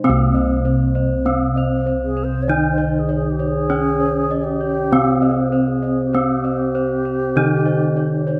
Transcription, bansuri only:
0, 0, Header, 1, 2, 480
1, 0, Start_track
1, 0, Tempo, 1218274
1, 17, Time_signature, 4, 2, 24, 8
1, 3308, End_track
2, 0, Start_track
2, 0, Title_t, "Bansuri"
2, 0, Program_c, 0, 73
2, 802, Note_on_c, 0, 68, 86
2, 883, Note_on_c, 0, 72, 98
2, 889, Note_off_c, 0, 68, 0
2, 956, Note_on_c, 0, 73, 90
2, 962, Note_off_c, 0, 72, 0
2, 1012, Note_on_c, 0, 75, 82
2, 1018, Note_off_c, 0, 73, 0
2, 1068, Note_off_c, 0, 75, 0
2, 1071, Note_on_c, 0, 72, 87
2, 1118, Note_off_c, 0, 72, 0
2, 1121, Note_on_c, 0, 72, 72
2, 1178, Note_on_c, 0, 68, 74
2, 1184, Note_off_c, 0, 72, 0
2, 1237, Note_off_c, 0, 68, 0
2, 1239, Note_on_c, 0, 68, 81
2, 1302, Note_on_c, 0, 67, 78
2, 1308, Note_off_c, 0, 68, 0
2, 1371, Note_on_c, 0, 68, 103
2, 1377, Note_off_c, 0, 67, 0
2, 1731, Note_off_c, 0, 68, 0
2, 1734, Note_on_c, 0, 68, 94
2, 1750, Note_on_c, 0, 67, 102
2, 1754, Note_off_c, 0, 68, 0
2, 2086, Note_on_c, 0, 68, 72
2, 2092, Note_off_c, 0, 67, 0
2, 2129, Note_on_c, 0, 72, 66
2, 2135, Note_off_c, 0, 68, 0
2, 2165, Note_on_c, 0, 68, 60
2, 2171, Note_off_c, 0, 72, 0
2, 2205, Note_on_c, 0, 72, 56
2, 2211, Note_off_c, 0, 68, 0
2, 2241, Note_on_c, 0, 68, 69
2, 2247, Note_off_c, 0, 72, 0
2, 2372, Note_off_c, 0, 68, 0
2, 2372, Note_on_c, 0, 68, 83
2, 2391, Note_on_c, 0, 67, 90
2, 2395, Note_off_c, 0, 68, 0
2, 3308, Note_off_c, 0, 67, 0
2, 3308, End_track
0, 0, End_of_file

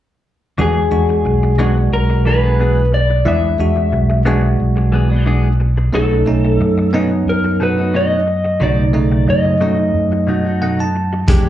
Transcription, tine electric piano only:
0, 0, Header, 1, 2, 480
1, 0, Start_track
1, 0, Tempo, 668896
1, 422, Time_signature, 4, 2, 24, 8
1, 8246, End_track
2, 0, Start_track
2, 0, Title_t, "Tine electric piano"
2, 0, Program_c, 0, 4
2, 416, Note_on_c, 0, 56, 60
2, 421, Note_on_c, 0, 62, 56
2, 424, Note_on_c, 0, 66, 67
2, 643, Note_off_c, 0, 56, 0
2, 645, Note_off_c, 0, 62, 0
2, 647, Note_off_c, 0, 66, 0
2, 654, Note_on_c, 0, 62, 58
2, 655, Note_on_c, 0, 56, 62
2, 659, Note_on_c, 0, 66, 69
2, 1106, Note_off_c, 0, 56, 0
2, 1106, Note_off_c, 0, 62, 0
2, 1108, Note_off_c, 0, 66, 0
2, 1140, Note_on_c, 0, 56, 76
2, 1142, Note_on_c, 0, 62, 69
2, 1149, Note_on_c, 0, 66, 84
2, 2036, Note_off_c, 0, 56, 0
2, 2037, Note_off_c, 0, 62, 0
2, 2041, Note_off_c, 0, 66, 0
2, 2335, Note_on_c, 0, 56, 62
2, 2336, Note_on_c, 0, 62, 56
2, 2340, Note_on_c, 0, 64, 69
2, 2562, Note_off_c, 0, 56, 0
2, 2563, Note_off_c, 0, 62, 0
2, 2564, Note_off_c, 0, 64, 0
2, 2579, Note_on_c, 0, 56, 65
2, 2583, Note_on_c, 0, 62, 60
2, 2586, Note_on_c, 0, 66, 72
2, 3028, Note_off_c, 0, 56, 0
2, 3030, Note_off_c, 0, 62, 0
2, 3031, Note_off_c, 0, 66, 0
2, 3058, Note_on_c, 0, 56, 78
2, 3062, Note_on_c, 0, 62, 72
2, 3064, Note_on_c, 0, 66, 83
2, 3955, Note_off_c, 0, 56, 0
2, 3957, Note_off_c, 0, 62, 0
2, 3958, Note_off_c, 0, 66, 0
2, 4252, Note_on_c, 0, 57, 61
2, 4256, Note_on_c, 0, 61, 60
2, 4261, Note_on_c, 0, 63, 70
2, 4480, Note_off_c, 0, 57, 0
2, 4482, Note_off_c, 0, 61, 0
2, 4484, Note_off_c, 0, 63, 0
2, 4495, Note_on_c, 0, 57, 67
2, 4501, Note_on_c, 0, 61, 61
2, 4503, Note_on_c, 0, 63, 73
2, 4945, Note_off_c, 0, 57, 0
2, 4949, Note_off_c, 0, 61, 0
2, 4950, Note_off_c, 0, 63, 0
2, 4972, Note_on_c, 0, 59, 75
2, 4978, Note_on_c, 0, 61, 75
2, 4983, Note_on_c, 0, 63, 83
2, 5872, Note_off_c, 0, 59, 0
2, 5875, Note_off_c, 0, 61, 0
2, 5878, Note_off_c, 0, 63, 0
2, 6173, Note_on_c, 0, 57, 60
2, 6178, Note_on_c, 0, 49, 57
2, 6182, Note_on_c, 0, 63, 72
2, 6401, Note_off_c, 0, 57, 0
2, 6403, Note_off_c, 0, 49, 0
2, 6405, Note_off_c, 0, 63, 0
2, 6410, Note_on_c, 0, 57, 65
2, 6414, Note_on_c, 0, 49, 61
2, 6416, Note_on_c, 0, 63, 71
2, 6863, Note_off_c, 0, 57, 0
2, 6865, Note_off_c, 0, 49, 0
2, 6866, Note_off_c, 0, 63, 0
2, 6895, Note_on_c, 0, 57, 66
2, 6902, Note_on_c, 0, 61, 58
2, 6904, Note_on_c, 0, 63, 72
2, 7619, Note_on_c, 0, 78, 62
2, 7738, Note_off_c, 0, 78, 0
2, 7752, Note_on_c, 0, 81, 59
2, 7794, Note_off_c, 0, 57, 0
2, 7798, Note_off_c, 0, 61, 0
2, 7799, Note_off_c, 0, 63, 0
2, 8079, Note_off_c, 0, 81, 0
2, 8093, Note_on_c, 0, 56, 76
2, 8099, Note_on_c, 0, 62, 68
2, 8105, Note_on_c, 0, 67, 83
2, 8246, Note_off_c, 0, 56, 0
2, 8246, Note_off_c, 0, 62, 0
2, 8246, Note_off_c, 0, 67, 0
2, 8246, End_track
0, 0, End_of_file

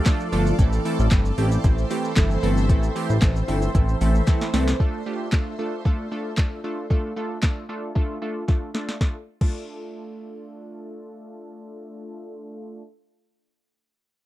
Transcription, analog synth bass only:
0, 0, Header, 1, 2, 480
1, 0, Start_track
1, 0, Key_signature, -1, "minor"
1, 0, Tempo, 526316
1, 536, Time_signature, 4, 2, 24, 8
1, 13003, End_track
2, 0, Start_track
2, 0, Title_t, "Analog synth bass"
2, 0, Program_c, 0, 38
2, 297, Note_on_c, 0, 31, 95
2, 480, Note_off_c, 0, 31, 0
2, 537, Note_on_c, 0, 33, 114
2, 720, Note_off_c, 0, 33, 0
2, 905, Note_on_c, 0, 33, 107
2, 991, Note_off_c, 0, 33, 0
2, 1018, Note_on_c, 0, 31, 101
2, 1201, Note_off_c, 0, 31, 0
2, 1257, Note_on_c, 0, 33, 93
2, 1440, Note_off_c, 0, 33, 0
2, 1500, Note_on_c, 0, 33, 92
2, 1682, Note_off_c, 0, 33, 0
2, 1979, Note_on_c, 0, 31, 87
2, 2161, Note_off_c, 0, 31, 0
2, 2216, Note_on_c, 0, 31, 99
2, 2458, Note_on_c, 0, 33, 116
2, 2472, Note_off_c, 0, 31, 0
2, 2641, Note_off_c, 0, 33, 0
2, 2824, Note_on_c, 0, 33, 100
2, 2910, Note_off_c, 0, 33, 0
2, 2938, Note_on_c, 0, 33, 106
2, 3121, Note_off_c, 0, 33, 0
2, 3176, Note_on_c, 0, 31, 95
2, 3359, Note_off_c, 0, 31, 0
2, 3419, Note_on_c, 0, 33, 102
2, 3601, Note_off_c, 0, 33, 0
2, 3656, Note_on_c, 0, 33, 96
2, 3839, Note_off_c, 0, 33, 0
2, 4137, Note_on_c, 0, 36, 102
2, 4320, Note_off_c, 0, 36, 0
2, 13003, End_track
0, 0, End_of_file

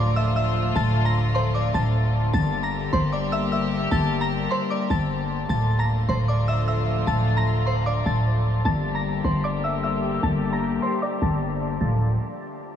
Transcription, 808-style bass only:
0, 0, Header, 1, 2, 480
1, 0, Start_track
1, 0, Key_signature, -1, "minor"
1, 0, Tempo, 394737
1, 921, Time_signature, 4, 2, 24, 8
1, 15516, End_track
2, 0, Start_track
2, 0, Title_t, "808-style bass"
2, 0, Program_c, 0, 38
2, 0, Note_on_c, 0, 26, 104
2, 872, Note_off_c, 0, 26, 0
2, 920, Note_on_c, 0, 26, 112
2, 2072, Note_off_c, 0, 26, 0
2, 2120, Note_on_c, 0, 26, 104
2, 2811, Note_off_c, 0, 26, 0
2, 2840, Note_on_c, 0, 31, 112
2, 3531, Note_off_c, 0, 31, 0
2, 3560, Note_on_c, 0, 31, 110
2, 4712, Note_off_c, 0, 31, 0
2, 4760, Note_on_c, 0, 31, 110
2, 5451, Note_off_c, 0, 31, 0
2, 5960, Note_on_c, 0, 31, 107
2, 6651, Note_off_c, 0, 31, 0
2, 6679, Note_on_c, 0, 26, 107
2, 7371, Note_off_c, 0, 26, 0
2, 7400, Note_on_c, 0, 26, 106
2, 8552, Note_off_c, 0, 26, 0
2, 8600, Note_on_c, 0, 26, 110
2, 9752, Note_off_c, 0, 26, 0
2, 9800, Note_on_c, 0, 26, 110
2, 10491, Note_off_c, 0, 26, 0
2, 10520, Note_on_c, 0, 31, 107
2, 11211, Note_off_c, 0, 31, 0
2, 11239, Note_on_c, 0, 31, 110
2, 12392, Note_off_c, 0, 31, 0
2, 12440, Note_on_c, 0, 31, 111
2, 13131, Note_off_c, 0, 31, 0
2, 13640, Note_on_c, 0, 31, 103
2, 14331, Note_off_c, 0, 31, 0
2, 14359, Note_on_c, 0, 26, 106
2, 14806, Note_off_c, 0, 26, 0
2, 15516, End_track
0, 0, End_of_file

